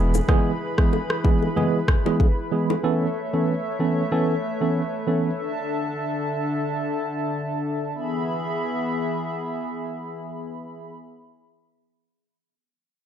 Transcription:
0.00 0.20 E1 medium
0.00 0.19 E3 medium
0.00 2.80 E3 medium
0.00 0.19 G#3 medium
0.00 0.19 B3 medium
0.00 2.80 E4 medium
0.00 0.19 G#4 medium
0.00 2.80 G#4 medium
0.00 5.35 B4 medium
0.00 2.80 B5 medium
0.00 downlifter medium
0.14 high bongo medium
0.14 low bongo medium
0.14 shaker medium
0.28 0.51 E3 medium
0.28 0.51 G#3 medium
0.28 0.51 B3 medium
0.28 0.51 G#4 loud
0.28 kick loud
0.28 cross-stick medium
0.28 low conga medium
0.78 0.98 E3 medium
0.78 0.98 G#3 medium
0.78 0.98 B3 medium
0.78 0.98 G#4 medium
0.78 kick medium
0.78 cross-stick medium
0.93 high bongo medium
1.10 cross-stick medium
1.24 1.46 E3 medium
1.24 1.46 G#3 medium
1.24 1.46 B3 medium
1.24 1.47 G#4 medium
1.24 kick medium
1.24 low bongo medium
1.42 high bongo medium
1.56 1.78 E3 medium
1.56 1.78 G#3 medium
1.56 1.78 B3 medium
1.56 1.79 G#4 loud
1.56 low conga medium
1.88 kick medium
1.88 cross-stick loud
1.88 low conga medium
2.05 2.25 E3 medium
2.05 2.26 G#3 medium
2.05 2.26 B3 medium
2.05 2.26 G#4 medium
2.05 low bongo medium
2.20 kick medium
2.20 high bongo medium
2.52 2.74 E3 medium
2.52 2.74 G#3 medium
2.52 2.74 B3 medium
2.52 2.74 G#4 medium
2.70 high bongo medium
2.70 low bongo medium
2.84 3.06 E3 medium
2.84 5.37 A3 medium
2.84 3.06 B3 medium
2.84 3.06 C#4 medium
2.84 7.91 A4 medium
2.84 3.06 A4 loud
2.84 5.37 C#5 medium
2.84 5.37 E5 medium
3.33 3.53 E3 medium
3.33 3.53 B3 medium
3.33 3.53 C#4 medium
3.33 3.53 A4 medium
3.79 4.02 E3 medium
3.79 4.02 B3 medium
3.79 4.02 C#4 medium
3.79 4.02 A4 medium
4.11 4.34 E3 medium
4.11 4.34 B3 medium
4.11 4.34 C#4 medium
4.11 4.34 A4 loud
4.61 4.81 E3 medium
4.61 4.81 B3 medium
4.61 4.81 C#4 medium
4.61 4.81 A4 medium
5.07 5.29 E3 medium
5.07 5.29 B3 medium
5.07 5.30 C#4 medium
5.07 5.30 A4 medium
5.39 7.92 D3 medium
5.39 7.92 D4 medium
5.39 7.92 E5 medium
5.39 7.92 A5 medium
7.94 10.92 E3 medium
7.94 10.92 B3 medium
7.94 10.92 G#4 medium
7.94 10.92 E5 medium
7.94 10.92 B5 medium

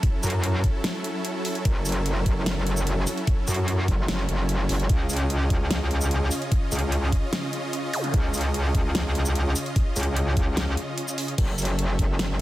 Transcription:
0.00 4.85 F#3 medium
0.00 11.34 C#4 medium
0.00 4.85 E4 medium
0.00 4.85 A4 medium
0.00 kick loud
0.00 closed hi-hat medium
0.23 0.62 F#2 medium
0.23 closed hi-hat medium
0.23 shaker medium
0.27 closed hi-hat medium
0.30 closed hi-hat medium
0.44 closed hi-hat medium
0.64 kick medium
0.64 closed hi-hat medium
0.84 snare loud
0.84 closed hi-hat medium
1.04 closed hi-hat medium
1.25 closed hi-hat medium
1.45 open hi-hat loud
1.55 closed hi-hat soft
1.65 2.24 F#1 loud
1.65 kick loud
1.65 closed hi-hat medium
1.85 closed hi-hat soft
1.85 shaker medium
1.89 closed hi-hat medium
1.92 closed hi-hat medium
2.06 closed hi-hat medium
2.26 3.05 F#1 loud
2.26 kick medium
2.26 closed hi-hat medium
2.46 snare loud
2.46 closed hi-hat medium
2.67 closed hi-hat medium
2.77 shaker medium
2.87 closed hi-hat medium
3.07 open hi-hat loud
3.07 shaker medium
3.17 closed hi-hat soft
3.27 kick loud
3.27 closed hi-hat medium
3.48 3.87 F#2 loud
3.48 closed hi-hat soft
3.48 shaker medium
3.51 closed hi-hat medium
3.54 closed hi-hat medium
3.68 closed hi-hat medium
3.88 4.07 F#1 loud
3.88 kick medium
3.88 closed hi-hat medium
4.08 4.27 F#1 loud
4.08 snare loud
4.08 closed hi-hat medium
4.29 4.68 F#1 loud
4.29 closed hi-hat medium
4.49 closed hi-hat medium
4.69 4.88 F#1 loud
4.69 open hi-hat loud
4.80 closed hi-hat soft
4.89 5.49 C#2 loud
4.89 11.34 C#3 medium
4.89 11.34 F4 medium
4.89 11.34 D#5 medium
4.89 kick loud
4.89 closed hi-hat medium
5.10 closed hi-hat soft
5.10 shaker medium
5.13 closed hi-hat medium
5.17 closed hi-hat medium
5.30 closed hi-hat medium
5.50 6.30 C#2 loud
5.50 kick medium
5.50 closed hi-hat medium
5.71 snare loud
5.71 closed hi-hat medium
5.91 closed hi-hat soft
6.01 shaker medium
6.11 closed hi-hat medium
6.31 open hi-hat loud
6.31 shaker medium
6.42 closed hi-hat soft
6.52 kick loud
6.52 closed hi-hat medium
6.72 7.11 C#2 loud
6.72 closed hi-hat soft
6.72 shaker medium
6.75 closed hi-hat medium
6.79 closed hi-hat medium
6.92 closed hi-hat medium
7.12 kick medium
7.12 closed hi-hat soft
7.33 snare loud
7.33 closed hi-hat medium
7.53 closed hi-hat medium
7.73 closed hi-hat medium
7.93 open hi-hat medium
7.93 zap medium
8.04 closed hi-hat soft
8.14 8.73 C#2 loud
8.14 kick loud
8.14 closed hi-hat medium
8.34 closed hi-hat soft
8.34 shaker medium
8.38 closed hi-hat medium
8.41 closed hi-hat medium
8.54 closed hi-hat medium
8.75 9.54 C#2 loud
8.75 kick medium
8.75 closed hi-hat medium
8.95 snare loud
8.95 closed hi-hat medium
9.15 closed hi-hat medium
9.26 shaker medium
9.35 closed hi-hat medium
9.56 open hi-hat loud
9.56 shaker medium
9.66 closed hi-hat soft
9.76 kick loud
9.76 closed hi-hat medium
9.96 10.35 C#2 loud
9.96 closed hi-hat soft
9.96 shaker medium
10.00 closed hi-hat medium
10.03 closed hi-hat medium
10.16 closed hi-hat medium
10.37 10.55 C#2 loud
10.37 kick medium
10.37 closed hi-hat medium
10.57 10.76 C#2 loud
10.57 snare loud
10.57 closed hi-hat medium
10.77 closed hi-hat medium
10.98 closed hi-hat medium
11.08 shaker medium
11.18 open hi-hat loud
11.28 closed hi-hat soft
11.38 11.97 F#1 loud
11.38 12.41 F#3 medium
11.38 12.41 C#4 medium
11.38 12.41 A4 medium
11.38 12.41 E5 medium
11.38 kick loud
11.38 closed hi-hat medium
11.38 crash medium
11.58 closed hi-hat medium
11.58 shaker medium
11.62 closed hi-hat medium
11.65 closed hi-hat medium
11.79 closed hi-hat medium
11.99 12.41 F#1 loud
11.99 kick medium
11.99 closed hi-hat medium
12.19 snare loud
12.19 closed hi-hat medium

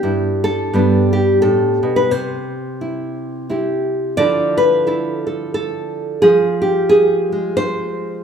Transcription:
0.00 0.72 G2 medium
0.00 0.69 E4 soft
0.00 0.43 G4 medium
0.44 1.12 A4 medium
0.73 1.42 G2 medium
0.73 2.08 G3 soft
0.73 2.08 B3 soft
0.73 2.12 D4 soft
1.13 1.41 G4 medium
1.42 1.82 A2 medium
1.42 1.96 A4 medium
1.83 2.11 B2 medium
1.96 2.11 B4 medium
2.11 4.18 C3 medium
2.11 3.50 C5 medium
2.81 3.49 E4 soft
3.49 4.14 C4 soft
3.49 4.15 E4 soft
3.49 4.17 G4 soft
4.17 6.20 D3 medium
4.17 6.21 F3 soft
4.17 4.85 E4 soft
4.17 4.86 A4 soft
4.17 4.57 D5 loud
4.57 5.95 B4 medium
4.87 6.20 E4 soft
4.87 5.25 A4 soft
5.27 5.53 A4 soft
5.54 6.21 A4 medium
6.22 8.24 F3 medium
6.22 6.88 G#4 medium
6.62 7.56 G4 medium
6.89 8.24 G#4 medium
7.32 8.24 G#3 soft
7.57 8.24 C5 loud

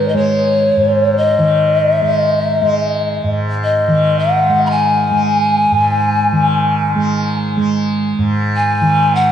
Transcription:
0.00 0.76 G#2 soft
0.00 1.38 D#3 medium
0.00 0.14 G#3 soft
0.08 0.18 D#5 soft
0.14 2.02 G#3 medium
0.14 1.19 C#5 medium
0.77 3.23 G#2 soft
1.17 1.95 D#5 medium
1.38 3.87 D#3 soft
1.95 2.16 E5 medium
2.02 2.61 G#3 soft
2.16 2.40 D#5 medium
2.40 2.61 E5 medium
2.61 4.49 G#3 medium
2.61 3.38 D#5 medium
3.24 5.71 G#2 medium
3.64 4.20 D#5 medium
3.88 6.32 D#3 soft
4.19 4.68 F#5 medium
4.49 5.11 G#3 soft
4.66 4.72 B5 medium
4.71 7.40 G#5 medium
5.11 6.95 G#3 medium
5.71 8.18 G#2 soft
6.32 8.81 D#3 soft
6.95 7.57 G#3 medium
7.57 9.32 G#3 soft
8.18 9.32 G#2 medium
8.56 9.17 G#5 medium
8.81 9.32 D#3 soft
9.15 9.32 F#5 medium

